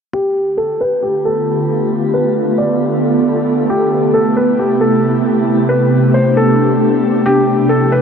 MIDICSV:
0, 0, Header, 1, 3, 480
1, 0, Start_track
1, 0, Tempo, 444444
1, 150, Time_signature, 4, 2, 24, 8
1, 8659, End_track
2, 0, Start_track
2, 0, Title_t, "Felt piano"
2, 0, Program_c, 0, 0
2, 144, Note_on_c, 0, 67, 98
2, 598, Note_off_c, 0, 67, 0
2, 620, Note_on_c, 0, 69, 80
2, 852, Note_off_c, 0, 69, 0
2, 871, Note_on_c, 0, 71, 84
2, 1098, Note_off_c, 0, 71, 0
2, 1108, Note_on_c, 0, 67, 80
2, 1337, Note_off_c, 0, 67, 0
2, 1353, Note_on_c, 0, 69, 82
2, 2028, Note_off_c, 0, 69, 0
2, 2308, Note_on_c, 0, 71, 75
2, 2760, Note_off_c, 0, 71, 0
2, 2787, Note_on_c, 0, 74, 73
2, 3945, Note_off_c, 0, 74, 0
2, 3993, Note_on_c, 0, 67, 94
2, 4443, Note_off_c, 0, 67, 0
2, 4469, Note_on_c, 0, 69, 79
2, 4697, Note_off_c, 0, 69, 0
2, 4713, Note_on_c, 0, 71, 81
2, 4940, Note_off_c, 0, 71, 0
2, 4958, Note_on_c, 0, 67, 77
2, 5182, Note_off_c, 0, 67, 0
2, 5192, Note_on_c, 0, 69, 79
2, 5868, Note_off_c, 0, 69, 0
2, 6143, Note_on_c, 0, 71, 79
2, 6598, Note_off_c, 0, 71, 0
2, 6633, Note_on_c, 0, 72, 78
2, 6859, Note_off_c, 0, 72, 0
2, 6879, Note_on_c, 0, 69, 89
2, 7791, Note_off_c, 0, 69, 0
2, 7838, Note_on_c, 0, 67, 104
2, 8285, Note_off_c, 0, 67, 0
2, 8308, Note_on_c, 0, 69, 74
2, 8537, Note_off_c, 0, 69, 0
2, 8555, Note_on_c, 0, 71, 80
2, 8659, Note_off_c, 0, 71, 0
2, 8659, End_track
3, 0, Start_track
3, 0, Title_t, "Ambient pad"
3, 0, Program_c, 1, 92
3, 149, Note_on_c, 1, 50, 79
3, 149, Note_on_c, 1, 59, 75
3, 149, Note_on_c, 1, 65, 73
3, 150, Note_on_c, 1, 57, 70
3, 150, Note_on_c, 1, 67, 88
3, 2050, Note_off_c, 1, 67, 0
3, 2068, Note_on_c, 1, 69, 91
3, 3951, Note_off_c, 1, 50, 0
3, 3951, Note_off_c, 1, 65, 0
3, 3970, Note_off_c, 1, 69, 0
3, 3991, Note_on_c, 1, 64, 75
3, 3991, Note_on_c, 1, 67, 89
3, 3992, Note_on_c, 1, 48, 82
3, 5891, Note_off_c, 1, 64, 0
3, 5910, Note_on_c, 1, 62, 74
3, 7786, Note_off_c, 1, 59, 0
3, 7792, Note_off_c, 1, 48, 0
3, 7810, Note_off_c, 1, 62, 0
3, 7829, Note_on_c, 1, 53, 72
3, 7830, Note_on_c, 1, 47, 84
3, 7830, Note_on_c, 1, 64, 76
3, 8659, Note_off_c, 1, 47, 0
3, 8659, Note_off_c, 1, 53, 0
3, 8659, Note_off_c, 1, 57, 0
3, 8659, Note_off_c, 1, 64, 0
3, 8659, Note_off_c, 1, 67, 0
3, 8659, End_track
0, 0, End_of_file